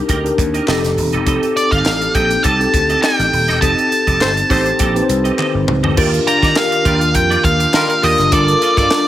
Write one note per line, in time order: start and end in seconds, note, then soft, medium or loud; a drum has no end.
0.00 0.67 C4 medium
0.00 0.14 D4 medium
0.00 0.24 D#4 medium
0.00 0.25 G4 medium
0.00 0.25 A#4 medium
0.08 0.29 D2 loud
0.08 0.31 G4 medium
0.08 0.24 A#4 loud
0.08 0.23 D#5 medium
0.08 kick medium
0.08 closed hi-hat medium
0.24 0.67 D4 medium
0.24 0.66 D#4 medium
0.24 0.67 G4 medium
0.24 0.68 A#4 medium
0.24 muted clean electric guitar stroke medium
0.24 closed hi-hat medium
0.38 0.58 D#2 medium
0.38 muted clean electric guitar stroke soft
0.38 kick loud
0.38 closed hi-hat medium
0.54 0.66 G4 soft
0.54 0.68 A#4 medium
0.54 0.68 D#5 medium
0.54 closed hi-hat soft
0.67 0.79 F1 medium
0.67 1.15 C4 medium
0.67 1.16 D#4 medium
0.67 0.90 G4 medium
0.67 1.16 G4 medium
0.67 0.83 A4 medium
0.67 1.16 A4 loud
0.67 0.82 D#5 medium
0.67 snare loud
0.67 clap medium
0.84 0.93 F1 medium
0.84 muted clean electric guitar stroke medium
0.84 snare soft
0.84 closed hi-hat soft
0.97 1.08 D#1 medium
0.97 muted clean electric guitar stroke soft
0.97 open hi-hat medium
1.13 1.23 E1 medium
1.13 1.25 G4 medium
1.13 1.26 A4 medium
1.13 1.26 D#5 medium
1.13 closed hi-hat soft
1.26 1.38 F1 medium
1.26 1.97 C4 medium
1.26 1.97 D#4 medium
1.26 1.54 G4 medium
1.26 1.98 G4 medium
1.26 1.54 A4 loud
1.26 1.98 A4 loud
1.26 1.54 D#5 medium
1.26 kick loud
1.26 closed hi-hat medium
1.43 closed hi-hat soft
1.56 1.72 D5 medium
1.56 muted clean electric guitar stroke soft
1.56 closed hi-hat medium
1.72 1.81 G1 medium
1.72 1.84 G4 soft
1.72 1.85 A4 medium
1.72 1.85 D#5 medium
1.72 2.16 F5 loud
1.72 kick medium
1.72 closed hi-hat soft
1.85 2.06 A1 loud
1.85 muted clean electric guitar stroke soft
1.85 snare loud
1.85 clap medium
2.01 muted clean electric guitar stroke soft
2.01 closed hi-hat soft
2.14 2.35 A#1 medium
2.14 2.50 C4 medium
2.14 2.50 D#4 medium
2.14 2.37 G4 medium
2.14 2.51 G4 medium
2.14 2.30 A4 medium
2.14 2.51 A4 medium
2.14 2.29 D#5 medium
2.14 2.43 G5 medium
2.14 kick medium
2.14 closed hi-hat medium
2.30 muted clean electric guitar stroke soft
2.30 closed hi-hat soft
2.44 2.65 C2 medium
2.44 2.66 G4 medium
2.44 2.60 A4 medium
2.44 2.59 D#5 loud
2.44 2.99 A5 loud
2.44 kick medium
2.44 closed hi-hat medium
2.59 3.41 C4 medium
2.59 3.41 D#4 medium
2.59 3.41 G4 medium
2.59 3.41 A4 medium
2.59 muted clean electric guitar stroke soft
2.59 closed hi-hat soft
2.74 2.94 D2 medium
2.74 muted clean electric guitar stroke soft
2.74 kick loud
2.74 closed hi-hat medium
2.90 3.02 G4 soft
2.90 3.02 A4 soft
2.90 3.03 D#5 medium
2.90 closed hi-hat soft
3.02 3.25 G4 medium
3.02 3.19 A4 medium
3.02 3.18 D#5 loud
3.02 3.58 G5 loud
3.02 snare loud
3.02 clap medium
3.19 3.28 A1 medium
3.19 muted clean electric guitar stroke soft
3.19 snare soft
3.19 closed hi-hat medium
3.32 3.49 D#1 medium
3.32 muted clean electric guitar stroke soft
3.32 open hi-hat medium
3.48 3.58 E1 medium
3.48 3.60 G4 medium
3.48 3.61 A4 medium
3.48 3.62 D#5 medium
3.48 snare soft
3.48 closed hi-hat soft
3.61 3.73 F1 loud
3.61 4.32 C4 medium
3.61 4.33 D#4 medium
3.61 3.89 G4 medium
3.61 4.33 G4 medium
3.61 3.90 A4 medium
3.61 4.33 A4 medium
3.61 3.90 D#5 loud
3.61 5.34 A5 medium
3.61 kick loud
3.61 closed hi-hat medium
3.79 closed hi-hat soft
3.91 muted clean electric guitar stroke soft
3.91 closed hi-hat medium
4.07 4.17 F1 medium
4.07 4.19 G4 soft
4.07 4.20 A4 medium
4.07 4.20 D#5 medium
4.07 kick medium
4.07 closed hi-hat soft
4.20 4.41 G1 medium
4.20 4.31 A3 medium
4.20 4.31 G4 medium
4.20 4.31 C5 loud
4.20 muted clean electric guitar stroke soft
4.20 snare medium
4.20 clap medium
4.36 muted clean electric guitar stroke soft
4.36 closed hi-hat soft
4.49 4.70 A1 medium
4.49 4.69 A3 medium
4.49 4.85 C4 medium
4.49 4.85 D#4 medium
4.49 4.68 G4 medium
4.49 4.72 G4 medium
4.49 4.86 G4 medium
4.49 4.65 A4 medium
4.49 4.69 C5 loud
4.49 4.86 C5 loud
4.49 4.65 D#5 medium
4.49 kick medium
4.49 open hi-hat medium
4.66 muted clean electric guitar stroke soft
4.66 closed hi-hat soft
4.79 5.00 A#1 loud
4.79 5.02 G4 medium
4.79 4.95 A4 medium
4.79 4.94 D#5 medium
4.79 kick medium
4.79 closed hi-hat loud
4.95 5.76 C4 medium
4.95 5.76 D#4 medium
4.95 5.76 G4 medium
4.95 5.02 B4 medium
4.95 muted clean electric guitar stroke medium
4.95 closed hi-hat medium
5.02 5.80 C5 medium
5.09 5.29 C2 medium
5.09 muted clean electric guitar stroke soft
5.09 closed hi-hat medium
5.24 5.36 G4 soft
5.24 5.37 A4 soft
5.24 5.38 D#5 medium
5.24 closed hi-hat soft
5.38 5.60 G4 medium
5.38 5.53 A4 medium
5.38 5.53 D#5 medium
5.38 clap medium
5.38 high tom medium
5.54 5.64 G1 medium
5.54 muted clean electric guitar stroke soft
5.67 5.83 C#2 loud
5.67 muted clean electric guitar stroke medium
5.67 mid tom medium
5.83 5.93 D2 medium
5.83 5.96 G4 soft
5.83 5.97 A4 medium
5.83 5.97 D#5 medium
5.83 floor tom medium
5.97 6.18 D#2 loud
5.97 8.30 D#3 medium
5.97 8.30 A#3 medium
5.97 6.45 D4 medium
5.97 9.08 D4 medium
5.97 6.19 F4 medium
5.97 6.45 F4 medium
5.97 8.30 F4 medium
5.97 8.30 G4 medium
5.97 6.12 G4 medium
5.97 6.45 G4 medium
5.97 6.45 A#4 loud
5.97 6.11 D5 loud
5.97 kick loud
5.97 crash loud
6.13 muted clean electric guitar stroke soft
6.13 closed hi-hat soft
6.26 6.42 F4 medium
6.26 6.42 G4 medium
6.26 6.41 D5 medium
6.26 6.57 A#5 loud
6.26 closed hi-hat medium
6.42 6.52 D#3 medium
6.42 6.55 F4 soft
6.42 6.55 G4 soft
6.42 6.56 D5 medium
6.42 kick medium
6.42 snare soft
6.42 closed hi-hat soft
6.55 7.49 D4 medium
6.55 7.49 F4 medium
6.55 7.49 G4 medium
6.55 7.50 A#4 medium
6.55 7.15 F5 medium
6.55 muted clean electric guitar stroke soft
6.55 snare loud
6.55 clap medium
6.72 muted clean electric guitar stroke soft
6.72 closed hi-hat soft
6.85 7.15 D#2 medium
6.85 6.99 G3 medium
6.85 7.07 F4 medium
6.85 6.99 F4 medium
6.85 7.01 G4 medium
6.85 6.99 A#4 medium
6.85 7.00 D5 loud
6.85 kick loud
6.85 closed hi-hat medium
7.01 muted clean electric guitar stroke soft
7.01 closed hi-hat medium
7.14 7.35 F2 loud
7.14 7.44 G5 medium
7.14 muted clean electric guitar stroke soft
7.14 kick medium
7.14 closed hi-hat loud
7.30 7.43 F4 medium
7.30 7.43 G4 medium
7.30 7.44 D5 medium
7.30 closed hi-hat soft
7.44 7.65 D#2 medium
7.44 8.05 F5 medium
7.44 muted clean electric guitar stroke soft
7.44 kick loud
7.44 closed hi-hat medium
7.60 muted clean electric guitar stroke soft
7.60 closed hi-hat soft
7.74 7.85 D#3 loud
7.74 7.93 G3 medium
7.74 7.93 F4 medium
7.74 7.93 A#4 loud
7.74 snare loud
7.74 clap medium
7.89 muted clean electric guitar stroke soft
7.89 closed hi-hat medium
8.02 8.14 D#2 medium
8.02 8.26 D4 medium
8.02 8.25 F4 medium
8.02 8.27 F4 medium
8.02 8.27 G4 medium
8.02 8.18 G4 medium
8.02 8.27 A#4 medium
8.02 8.18 D#5 medium
8.02 8.33 D#5 medium
8.02 open hi-hat medium
8.18 8.28 F#1 medium
8.18 muted clean electric guitar stroke medium
8.18 snare soft
8.18 closed hi-hat soft
8.32 8.53 G1 loud
8.32 9.08 G3 medium
8.32 9.08 A#3 medium
8.32 8.54 A#3 medium
8.32 8.80 D4 medium
8.32 9.08 F4 medium
8.32 8.80 F4 medium
8.32 8.48 F4 medium
8.32 8.80 A4 medium
8.32 8.47 A4 loud
8.32 8.80 A#4 medium
8.32 8.77 D5 medium
8.32 kick loud
8.32 closed hi-hat medium
8.48 muted clean electric guitar stroke soft
8.48 closed hi-hat medium
8.61 8.77 A#3 medium
8.61 8.77 F4 medium
8.61 8.76 A4 medium
8.61 closed hi-hat medium
8.77 8.87 G2 medium
8.77 8.90 A#3 soft
8.77 8.90 F4 medium
8.77 8.91 A4 medium
8.77 9.08 D5 medium
8.77 kick medium
8.77 snare soft
8.77 closed hi-hat soft
8.90 9.08 D4 medium
8.90 9.08 F4 medium
8.90 9.08 A4 medium
8.90 9.08 A#4 medium
8.90 muted clean electric guitar stroke soft
8.90 snare loud
8.90 clap medium